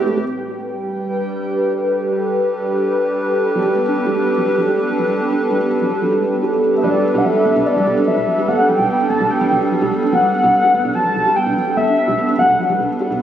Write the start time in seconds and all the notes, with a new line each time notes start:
Already playing: A2 A3 C4 G4 B4 G5
0.06 A3
0.16 G4
0.26 G3 G5
0.51 G4
0.68 D4
1.60 A4
3.55 F#3
3.65 G3
3.76 B3
3.86 D4
3.96 B3
4.07 G3
4.17 B3
4.27 D4
4.37 F#3
4.48 G3
4.58 F#3
4.68 G3
4.78 B3
4.89 D4
4.99 F#3
5.09 G3
5.20 B3
5.30 D4
5.40 B3
5.50 G3
5.61 B3
5.71 D4
5.81 F#3
5.91 G3
6.02 F#3
6.12 G3
6.22 D4
6.33 B3
6.43 G4
6.53 B3
6.63 D4
6.74 B3 E5
6.84 G1 F#3 D5
6.94 G3
7.04 B3
7.15 B1 D4 F#5
7.25 F#3 E5
7.35 G3
7.46 G1 B3
7.56 B1 D4
7.66 B3 D5
7.76 D1 G3
7.87 B1 B3
7.97 D4
8.07 F#3 E5
8.17 B1 G3
8.28 F#3
8.38 G3
8.48 G1 B3 F#5
8.59 D4
8.69 F#3 G5
8.79 B1 G3
8.89 B3
9.00 D4
9.10 G1 B3 A5
9.20 B1 G3
9.30 B3 G5
9.41 D1 D4
9.51 B1 F#3
9.61 G3
9.72 F#3
9.82 B1 G3
9.92 B3
10.02 D4
10.13 G1 F#3 F#5
10.23 G3
10.33 B3
10.44 B1 D4
10.54 B3
10.64 G3
10.74 G1 B3
10.85 B1 D4
10.95 F#3 A5
11.05 D1 G3
11.15 B1 F#3
11.26 G3
11.36 B3 G5
11.46 B1 D4
11.57 F#3
11.67 G3
11.77 G1 B3 E5
11.87 D4
11.98 B3
12.08 B1 G3
12.18 B3
12.28 D4
12.39 G1 F#3 F#5
12.49 B1 G3
12.59 F#3
12.69 D1 G3
12.80 B1 D4
12.90 B3
13.00 G4
13.11 B1 B3